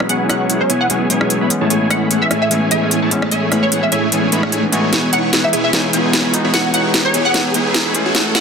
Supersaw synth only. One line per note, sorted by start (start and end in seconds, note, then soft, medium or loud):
0.00 0.07 B3 medium
0.00 0.07 E4 medium
0.00 0.07 G#4 medium
0.00 0.07 C#5 medium
0.00 0.07 B5 medium
0.09 0.27 B3 medium
0.09 0.27 E4 medium
0.09 0.27 G#4 medium
0.09 0.27 C#5 medium
0.09 0.27 G#5 medium
0.29 0.47 B3 medium
0.29 0.47 E4 medium
0.29 0.47 G#4 medium
0.29 0.47 C#5 medium
0.29 0.47 C#6 medium
0.49 0.61 B3 medium
0.49 0.61 E4 medium
0.49 0.61 G#4 medium
0.49 0.61 C#5 medium
0.49 0.61 F#5 medium
0.70 0.88 B3 loud
0.70 0.88 E4 medium
0.70 0.88 G#4 medium
0.70 0.88 C#5 medium
0.70 0.88 G#5 loud
0.90 1.08 B3 medium
0.90 1.08 E4 medium
0.90 1.08 G#4 medium
0.90 1.08 C#5 medium
0.90 1.08 G#5 medium
1.10 1.38 B3 medium
1.10 1.38 E4 medium
1.10 1.38 G#4 medium
1.10 1.38 C#5 medium
1.10 1.38 G#5 loud
1.41 1.49 B3 medium
1.41 1.49 E4 medium
1.41 1.49 G#4 medium
1.41 1.49 C#5 medium
1.41 1.49 B5 medium
1.61 1.68 A3 medium
1.61 1.68 E4 medium
1.61 1.68 G#4 medium
1.61 1.68 C#5 medium
1.61 1.68 A5 loud
1.70 1.88 A3 medium
1.70 1.88 E4 medium
1.70 1.88 G#4 medium
1.70 1.88 C#5 medium
1.70 1.88 G#5 medium
1.90 2.08 A3 medium
1.90 2.08 E4 medium
1.90 2.08 G#4 medium
1.90 2.08 C#5 medium
1.90 2.08 B5 loud
2.11 2.22 A3 medium
2.11 2.22 E4 medium
2.11 2.22 G#4 medium
2.11 2.22 C#5 medium
2.11 2.22 F#5 medium
2.31 2.49 A3 medium
2.31 2.49 E4 medium
2.31 2.49 G#4 medium
2.31 2.49 C#5 medium
2.31 2.49 G#5 loud
2.51 2.69 A3 medium
2.51 2.69 E4 medium
2.51 2.69 G#4 medium
2.51 2.69 C#5 medium
2.51 2.69 G#5 medium
2.71 3.00 A3 medium
2.71 3.00 E4 medium
2.71 3.00 G#4 medium
2.71 3.00 C#5 medium
2.71 3.00 G#5 loud
3.02 3.12 A3 medium
3.02 3.12 E4 medium
3.02 3.12 G#4 medium
3.02 3.12 C#5 medium
3.02 3.12 A5 medium
3.22 3.29 A3 medium
3.22 3.29 E4 medium
3.22 3.29 G#4 medium
3.22 3.29 C#5 medium
3.22 3.29 A5 loud
3.32 3.49 A3 medium
3.32 3.49 E4 medium
3.32 3.49 G#4 medium
3.32 3.49 C#5 medium
3.32 3.50 G#5 medium
3.52 3.70 A3 medium
3.52 3.70 E4 medium
3.52 3.70 G#4 medium
3.52 3.70 C#5 medium
3.52 3.70 B5 loud
3.72 3.83 A3 medium
3.72 3.83 E4 medium
3.72 3.83 G#4 medium
3.72 3.83 C#5 medium
3.72 3.83 F#5 medium
3.92 4.10 A3 loud
3.92 4.10 E4 medium
3.92 4.10 G#4 medium
3.92 4.10 C#5 medium
3.92 4.10 G#5 loud
4.12 4.30 A3 medium
4.12 4.30 E4 medium
4.12 4.30 G#4 medium
4.12 4.30 C#5 medium
4.12 4.30 G#5 medium
4.32 4.42 A3 loud
4.32 4.42 E4 medium
4.32 4.42 G#4 medium
4.32 4.42 C#5 medium
4.32 4.42 B5 loud
4.43 4.51 A3 medium
4.43 4.51 E4 medium
4.43 4.51 G#4 medium
4.43 4.51 C#5 medium
4.43 4.51 F#5 loud
4.52 4.64 A3 loud
4.52 4.64 E4 loud
4.52 4.64 G#4 loud
4.52 4.64 C#5 medium
4.52 4.64 G#5 loud
4.72 4.90 A3 medium
4.72 4.90 E4 medium
4.72 4.90 G#4 medium
4.72 4.90 C#5 medium
4.72 4.90 G#5 loud
4.93 5.11 B3 medium
4.93 5.11 E4 medium
4.93 5.11 G#4 medium
4.93 5.11 G#5 loud
5.13 5.31 B3 medium
5.13 5.31 E4 medium
5.13 5.31 G#4 medium
5.13 5.31 C#5 medium
5.13 5.31 C#6 medium
5.33 5.44 B3 medium
5.33 5.44 E4 medium
5.33 5.44 G#4 medium
5.33 5.44 C#5 medium
5.33 5.44 F#5 medium
5.53 5.71 B3 loud
5.53 5.71 E4 medium
5.53 5.71 G#4 medium
5.53 5.71 C#5 medium
5.53 5.71 G#5 loud
5.73 5.91 B3 medium
5.73 5.91 E4 medium
5.73 5.91 G#4 medium
5.73 5.91 C#5 medium
5.73 5.91 G#5 medium
5.93 6.22 B3 medium
5.93 6.22 E4 medium
5.93 6.22 G#4 medium
5.93 6.22 C#5 medium
5.93 6.22 G#5 loud
6.24 6.34 B3 medium
6.24 6.34 E4 medium
6.24 6.34 G#4 medium
6.24 6.34 C#5 medium
6.24 6.34 B5 medium
6.44 6.51 B3 medium
6.44 6.51 E4 medium
6.44 6.51 G#4 medium
6.44 6.51 C#5 medium
6.44 6.51 B5 loud
6.54 6.72 B3 medium
6.54 6.72 E4 medium
6.54 6.72 G#4 medium
6.54 6.72 C#5 medium
6.54 6.72 G#5 loud
6.74 6.92 B3 medium
6.74 6.92 E4 medium
6.74 6.92 G#4 medium
6.74 6.92 C#5 medium
6.74 6.92 C#6 medium
6.94 7.05 B3 medium
6.94 7.05 E4 medium
6.94 7.05 G#4 medium
6.94 7.05 C#5 medium
6.94 7.05 F#5 medium
7.14 7.32 B3 loud
7.14 7.32 E4 medium
7.14 7.32 G#4 medium
7.14 7.32 C#5 medium
7.14 7.32 G#5 loud
7.34 7.52 B3 medium
7.34 7.52 E4 medium
7.34 7.52 G#4 medium
7.34 7.52 C#5 medium
7.34 7.52 G#5 loud
7.54 7.83 B3 medium
7.54 7.83 E4 medium
7.54 7.83 G#4 medium
7.54 7.83 C#5 medium
7.54 7.83 G#5 loud
7.85 7.94 B3 medium
7.85 7.94 E4 medium
7.85 7.94 G#4 medium
7.85 7.94 C#5 medium
7.85 7.94 B5 medium
8.06 8.13 A3 medium
8.06 8.13 E4 medium
8.06 8.13 F#4 medium
8.06 8.13 C#5 medium
8.06 8.13 G#5 loud
8.15 8.33 A3 medium
8.15 8.33 E4 medium
8.15 8.33 F#4 medium
8.15 8.33 F#5 medium
8.35 8.40 A3 medium
8.35 8.40 E4 medium
8.35 8.40 F#4 medium
8.35 8.40 C#5 medium
8.35 8.40 A5 medium